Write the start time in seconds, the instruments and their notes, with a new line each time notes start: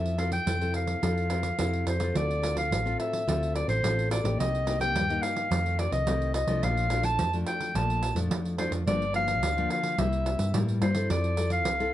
Already playing: picked electric bass F2, nylon-string guitar F3 C4 E4 A4, clarinet E5
0.06 pandeiro
0.18 nylon-string guitar C4 E4 A4, clarinet F5, pandeiro
0.32 clarinet G5, pandeiro
0.47 picked electric bass F2, nylon-string guitar C3 C4 E4 A4, pandeiro
0.61 nylon-string guitar C4 E4 A4, pandeiro
0.74 clarinet F5, pandeiro
0.87 pandeiro
1.02 picked electric bass F2, nylon-string guitar F3 C4 E4 A4, pandeiro
1.17 pandeiro
1.30 nylon-string guitar C4 E4 A4, pandeiro
1.43 pandeiro
1.59 picked electric bass F2, nylon-string guitar C3 C4 E4 A4, pandeiro
1.73 pandeiro
1.86 picked electric bass F2, clarinet C5, pandeiro
2.00 nylon-string guitar C4 F4 A4, pandeiro
2.15 picked electric bass D2, nylon-string guitar D3, clarinet D5, pandeiro
2.31 pandeiro
2.42 nylon-string guitar C4 F4 A4, pandeiro
2.57 clarinet F5, pandeiro
2.71 picked electric bass A1, nylon-string guitar A2, pandeiro
2.85 nylon-string guitar C4 F4 A4, pandeiro
3.00 clarinet E5, pandeiro
3.13 pandeiro
3.27 picked electric bass D2, nylon-string guitar D3 C4 F4 A4, pandeiro
3.43 pandeiro
3.56 clarinet D5, pandeiro
3.68 picked electric bass A1, clarinet C5, pandeiro
3.83 picked electric bass A1, nylon-string guitar A2 C4 F4 A4, pandeiro
3.99 pandeiro
4.10 nylon-string guitar C4 F4 A4, clarinet D5, pandeiro
4.24 picked electric bass A1, nylon-string guitar A#3 D#4 G4, pandeiro
4.39 picked electric bass C2, nylon-string guitar C3, clarinet D#5, pandeiro
4.55 pandeiro
4.66 nylon-string guitar A#3 D#4 G4, pandeiro
4.80 nylon-string guitar A#3 D#4 G4, clarinet G5, pandeiro
4.95 picked electric bass D#2, nylon-string guitar G2, pandeiro
5.09 nylon-string guitar A#3 D#4 G4, pandeiro
5.22 clarinet F5, pandeiro
5.36 pandeiro
5.51 picked electric bass F2, nylon-string guitar F2 D#3 A3 C4, pandeiro
5.66 pandeiro
5.79 clarinet D5, pandeiro
5.92 picked electric bass C2, clarinet D#5, pandeiro
6.07 picked electric bass C2, nylon-string guitar C3 D#3 A3 C4, pandeiro
6.22 pandeiro
6.34 clarinet D#5, pandeiro
6.47 picked electric bass C2, nylon-string guitar F3 A3 D4, pandeiro
6.63 picked electric bass A#1, nylon-string guitar A#2, clarinet F5, pandeiro
6.77 pandeiro
6.90 nylon-string guitar F3 A3 D4, pandeiro
7.03 clarinet A5, pandeiro
7.19 picked electric bass F2, nylon-string guitar F2, pandeiro
7.33 nylon-string guitar F3 A3 D4, pandeiro
7.47 clarinet G5, pandeiro
7.60 pandeiro
7.75 picked electric bass A#1, nylon-string guitar A#2 F3 A3 D4, clarinet A5, pandeiro
7.90 pandeiro
8.03 pandeiro
8.15 picked electric bass F2, nylon-string guitar F3 A3 D4, pandeiro
8.31 picked electric bass F2, nylon-string guitar F2, pandeiro
8.45 pandeiro
8.58 nylon-string guitar F3 A3 D4, clarinet C5, pandeiro
8.71 picked electric bass F2, pandeiro
8.86 picked electric bass G1, nylon-string guitar G2 F3 A#3 D4, clarinet D5, pandeiro
9.02 pandeiro
9.14 nylon-string guitar F3 A#3 D4, clarinet F5, pandeiro
9.28 pandeiro
9.42 picked electric bass D2, nylon-string guitar D3, pandeiro
9.57 nylon-string guitar F3 A#3 D4, pandeiro
9.70 clarinet F5, pandeiro
9.83 pandeiro
9.98 picked electric bass C2, nylon-string guitar C3 G3 A#3 E4, clarinet E5, pandeiro
10.13 pandeiro
10.26 pandeiro
10.39 picked electric bass G2, pandeiro
10.54 nylon-string guitar G2 G3 A#3 E4, picked electric bass A2, pandeiro
10.69 pandeiro
10.82 picked electric bass G2, nylon-string guitar G3 A#3 E4, clarinet C5, pandeiro
10.95 nylon-string guitar C4 E4 A4, pandeiro
11.10 picked electric bass F2, nylon-string guitar F3, clarinet D5, pandeiro
11.24 pandeiro
11.37 nylon-string guitar C4 E4 A4, pandeiro
11.50 clarinet F5, pandeiro
11.65 picked electric bass C2, nylon-string guitar C3, pandeiro
11.80 nylon-string guitar C4 E4 A4, pandeiro